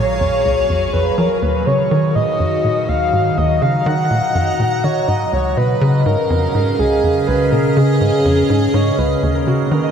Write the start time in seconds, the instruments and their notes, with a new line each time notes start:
Already playing: synth drone A#1, analog synth bass A#2, ambient pad A#2 F#3 G#4 C#5 F5, soft synth lead C#5
0.20 analog synth bass F2
0.45 analog synth bass C#2
0.69 analog synth bass F2
0.93 analog synth bass F2, soft synth lead B4
1.18 analog synth bass F3, soft synth lead A#4
1.42 analog synth bass D#2, ambient pad D#3, soft synth lead B4
1.57 ambient pad F#4
1.66 analog synth bass C#3, soft synth lead C#5
1.91 analog synth bass D#3
2.15 analog synth bass A#2, soft synth lead D#5
2.40 analog synth bass F#2
2.64 analog synth bass A#2
2.87 analog synth bass D#2, ambient pad D#5, soft synth lead F5
3.13 analog synth bass G#2
3.18 ambient pad A#5
3.37 analog synth bass D#2, soft synth lead D#5
3.62 analog synth bass C#3, soft synth lead F5
3.86 analog synth bass D#3, soft synth lead F#5
4.11 analog synth bass A#2
4.35 analog synth bass F#2
4.59 analog synth bass A#2
4.84 analog synth bass D#3, soft synth lead C#5
5.08 analog synth bass G#2, soft synth lead D#5
5.33 analog synth bass C#2, ambient pad C#3, soft synth lead C#5
5.57 analog synth bass B2, soft synth lead B4, ambient pad F5
5.81 analog synth bass C#3
5.91 ambient pad C#4
6.06 analog synth bass G#2, soft synth lead A#4
6.26 ambient pad G#4
6.30 analog synth bass F2
6.54 analog synth bass G#2
6.79 analog synth bass C#2, soft synth lead G#4
7.03 analog synth bass F2
7.27 analog synth bass C#2, soft synth lead B4
7.52 analog synth bass B2, soft synth lead A#4
7.76 analog synth bass C#3, soft synth lead G#4
8.01 analog synth bass G#2
8.25 analog synth bass F2
8.50 analog synth bass G#2
8.74 analog synth bass G#2, soft synth lead C#5
8.98 analog synth bass C#2, soft synth lead B4
9.23 analog synth bass D#2, ambient pad D#3
9.35 harp A#4
9.47 analog synth bass C#3, harp F#4
9.51 ambient pad A#3
9.71 analog synth bass D#3, harp A#4
9.84 harp D#5